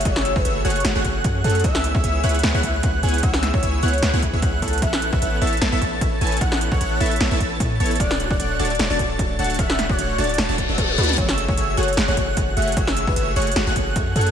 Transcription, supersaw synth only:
X:1
M:4/4
L:1/16
Q:"Swing 16ths" 1/4=151
K:F#m
V:1 name="Supersaw synth"
[A,FGce]3 [A,FGce] [A,FGce]2 [A,FGcf] z [A,FGcf] [A,FGcf] [A,FGcf]2 [A,FGcf]2 [A,FGcf]2 | [B,EGce]3 [B,EGce] [B,EGce]2 [B,EGcf] z [B,EGcf] [B,EGcf] [B,EGcf]2 [B,EGcf]2 [B,EGcf]2 | [B,EGce]3 [B,EGce] [B,EGce]2 [B,EGcf] z [B,EGcf] [B,EGcf] z [B,EGce] [B,EGcf]2 [B,EGcf]2 | [B,EAcf]3 [B,EAcf] [B,EAcf]2 [B,EAca] z [B,EAca] [B,EAca] [B,EAca]2 [B,EAca]2 [B,EAca]2 |
[B,EAcf]3 [B,EAcf] [B,EAcf]2 [B,EAca] z [B,EAca] [B,EAca] [B,EAca]2 [B,EAca]2 [B,EAca]2 | [A,DFcf]3 [A,DFcf] [A,DFcf]2 [A,DFca] z [A,DFca] [A,DFca] [A,DFca]2 [A,DFca]2 [A,DFca]2 | [A,DFcf]3 [A,DFcf] [A,DFcf]2 [A,DFca] z [A,DFca] [A,DFca] z [A,DFce] [A,DFca]2 [A,DFca]2 | [A,FGce]3 [A,FGce] [A,FGce]2 [A,FGcf] z [A,FGcf] [A,FGcf] [A,FGcf]2 [A,FGcf]2 [A,FGcf]2 |
[A,FGce]3 [A,FGce] [A,FGce]2 [A,FGcf] z [A,FGcf] [A,FGcf] [A,FGcf]2 [A,FGcf]2 [A,FGcf]2 |]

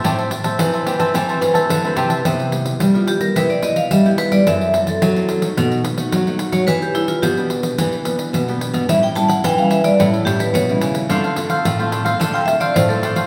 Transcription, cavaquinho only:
X:1
M:4/4
L:1/16
Q:1/4=108
K:Am
V:1 name="Cavaquinho"
[Gcea] [cea] z [cea]2 [cea] [Gcea] [cea] [Gcea] [cea] z [cea]2 [cea] [Gcea] [cea] | [K:C] z16 | z16 | z16 |
z16 | [DAcf] [Acf] z [Acf]2 [Acf] [DAcf] [Acf] [DAcf] [Acf] z [Acf]2 [Acf] [DAcf] [Acf] |]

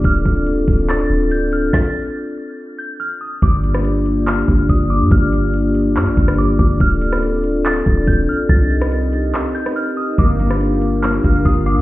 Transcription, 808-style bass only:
X:1
M:4/4
L:1/16
Q:1/4=142
K:Gm
V:1 name="808-style bass" clef=bass
D,,,2 D,,,4 D,,,4 D,,,6 | z16 | G,,,8- G,,,2 G,,,2 G,,,3 G,, | G,,,8 G,, G,,, G,,,4 G,,,2 |
D,,,8- D,,,2 D,,,2 D,,,2 z2 | C,,8 z8 | G,,,8- G,,,2 G,,,2 G,,,3 G,, |]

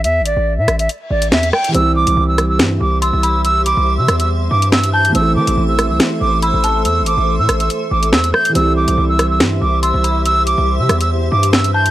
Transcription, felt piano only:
X:1
M:4/4
L:1/8
Q:1/4=141
K:C
V:1 name="Felt piano"
z8 | [E,G,CE]8- | [E,G,CE]8 | [E,A,CEA]8- |
[E,A,CEA]8 | [E,G,CEG]8- | [E,G,CEG]8 |]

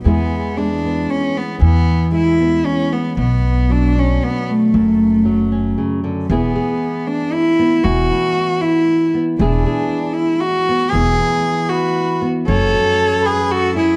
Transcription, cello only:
X:1
M:3/4
L:1/8
Q:1/4=116
K:Emix
V:1 name="Cello"
B,2 D2 C B, | B,2 E2 C B, | B,2 D C B, A,- | A,4 z2 |
B,3 D E2 | F3 E2 z | D3 E F2 | G3 F2 z |
A3 G F E |]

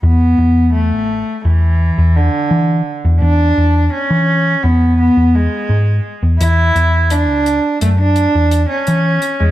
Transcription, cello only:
X:1
M:9/8
L:1/16
Q:3/8=57
K:Bdor
V:1 name="Cello"
B,4 A,4 E,4 D,4 z2 | D4 C4 B,2 B,2 G,4 z2 | E4 D4 A, D4 C4 G, |]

